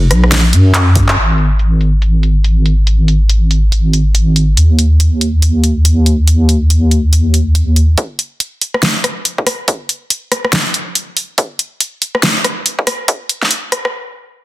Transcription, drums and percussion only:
0.11 cross-stick medium
0.11 closed hi-hat medium
0.24 cross-stick medium
0.32 snare loud
0.32 closed hi-hat medium
0.32 ride medium
0.53 closed hi-hat medium
0.74 clap loud
0.74 closed hi-hat medium
0.74 ride soft
0.96 kick medium
0.96 open hi-hat loud
1.08 clap medium
1.17 closed hi-hat medium
1.38 closed hi-hat medium
1.59 closed hi-hat medium
1.81 closed hi-hat soft
2.02 closed hi-hat medium
2.23 closed hi-hat medium
2.44 closed hi-hat medium
2.66 closed hi-hat medium
2.87 closed hi-hat medium
3.08 closed hi-hat medium
3.29 closed hi-hat medium
3.51 closed hi-hat soft
3.72 closed hi-hat medium
3.93 closed hi-hat medium
4.15 closed hi-hat medium
4.36 closed hi-hat soft
4.57 closed hi-hat medium
4.79 closed hi-hat soft
5.00 closed hi-hat medium
5.21 closed hi-hat soft
5.42 closed hi-hat medium
5.64 closed hi-hat medium
5.85 closed hi-hat medium
6.06 closed hi-hat soft
6.28 closed hi-hat medium
6.49 closed hi-hat medium
6.70 closed hi-hat medium
6.91 closed hi-hat soft
7.13 closed hi-hat medium
7.34 closed hi-hat soft
7.55 closed hi-hat medium
7.76 closed hi-hat soft
7.98 kick loud
7.98 closed hi-hat medium
8.19 closed hi-hat medium
8.40 closed hi-hat medium
8.61 closed hi-hat medium
8.74 cross-stick soft
8.83 snare loud
8.83 closed hi-hat medium
9.04 cross-stick medium
9.04 closed hi-hat medium
9.25 closed hi-hat medium
9.38 kick medium
9.47 cross-stick medium
9.47 open hi-hat medium
9.68 kick loud
9.68 closed hi-hat medium
9.89 closed hi-hat medium
10.10 closed hi-hat medium
10.32 cross-stick medium
10.32 closed hi-hat medium
10.45 cross-stick soft
10.53 snare loud
10.53 closed hi-hat medium
10.74 closed hi-hat medium
10.95 closed hi-hat medium
11.17 open hi-hat medium
11.38 kick loud
11.38 closed hi-hat medium
11.59 closed hi-hat medium
11.80 closed hi-hat medium
12.02 closed hi-hat medium
12.15 cross-stick medium
12.23 snare loud
12.23 closed hi-hat medium
12.44 cross-stick medium
12.44 closed hi-hat medium
12.66 closed hi-hat medium
12.79 kick medium
12.87 cross-stick medium
12.87 open hi-hat medium
13.08 kick loud
13.08 closed hi-hat medium
13.29 closed hi-hat medium
13.42 snare soft
13.51 closed hi-hat medium
13.72 cross-stick medium
13.72 closed hi-hat medium
13.85 cross-stick medium

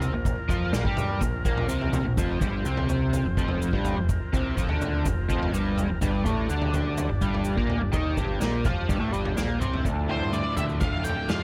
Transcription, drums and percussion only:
0.02 floor tom medium
0.02 shaker medium
0.25 kick loud
0.25 floor tom medium
0.25 shaker medium
0.49 kick loud
0.49 floor tom medium
0.49 shaker medium
0.73 snare medium
0.73 shaker medium
0.85 kick loud
0.97 floor tom medium
0.97 mid tom medium
0.97 shaker medium
1.21 kick medium
1.21 floor tom medium
1.21 shaker medium
1.45 kick loud
1.45 shaker medium
1.58 floor tom medium
1.69 shaker medium
1.81 floor tom medium
1.93 floor tom medium
1.93 mid tom medium
1.93 shaker medium
2.17 kick loud
2.17 floor tom medium
2.17 shaker medium
2.41 kick medium
2.41 floor tom medium
2.41 shaker medium
2.65 shaker medium
2.77 floor tom medium
2.89 floor tom medium
2.89 shaker medium
3.13 floor tom medium
3.13 shaker medium
3.37 kick loud
3.37 shaker medium
3.48 floor tom medium
3.62 shaker medium
3.73 kick loud
3.85 floor tom medium
3.85 shaker medium
4.09 kick loud
4.09 floor tom medium
4.09 shaker medium
4.33 kick medium
4.33 floor tom medium
4.33 shaker medium
4.57 kick loud
4.57 shaker medium
4.69 floor tom medium
4.81 floor tom medium
4.81 shaker medium
5.06 kick medium
5.06 floor tom medium
5.06 shaker medium
5.30 kick medium
5.30 shaker medium
5.43 floor tom medium
5.54 shaker medium
5.78 floor tom medium
5.78 shaker medium
6.02 kick loud
6.02 floor tom medium
6.02 shaker medium
6.26 kick loud
6.26 floor tom medium
6.26 shaker medium
6.50 shaker medium
6.62 floor tom medium
6.74 floor tom medium
6.74 shaker medium
6.98 floor tom medium
6.98 shaker medium
7.21 kick loud
7.21 shaker medium
7.34 floor tom medium
7.45 shaker medium
7.57 kick loud
7.70 floor tom medium
7.93 kick loud
7.93 floor tom medium
7.93 shaker medium
8.17 kick medium
8.17 floor tom medium
8.17 shaker medium
8.41 snare medium
8.41 shaker medium
8.65 kick loud
8.65 floor tom medium
8.65 mid tom medium
8.65 shaker medium
8.89 kick loud
8.89 floor tom medium
8.89 shaker medium
9.13 shaker medium
9.25 floor tom medium
9.37 snare medium
9.37 shaker medium
9.62 mid tom medium
9.62 shaker medium
9.73 floor tom medium
9.85 kick loud
9.85 floor tom medium
9.85 shaker medium
10.09 floor tom medium
10.33 shaker medium
10.57 floor tom medium
10.57 shaker medium
10.69 shaker soft
10.81 kick loud
10.81 floor tom medium
10.81 shaker medium
11.05 floor tom medium
11.05 shaker medium
11.29 snare medium
11.29 shaker medium

